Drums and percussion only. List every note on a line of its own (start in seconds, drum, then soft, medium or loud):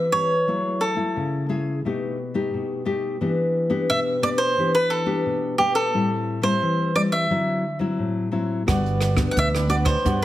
8.68 kick medium
8.68 cross-stick medium
8.68 closed hi-hat medium
8.86 closed hi-hat soft
9.01 cross-stick medium
9.01 closed hi-hat soft
9.17 kick medium
9.17 cross-stick medium
9.17 closed hi-hat soft
9.37 kick medium
9.37 closed hi-hat medium
9.55 cross-stick medium
9.70 closed hi-hat soft
9.85 kick medium
9.85 cross-stick medium
10.05 kick medium
10.05 closed hi-hat medium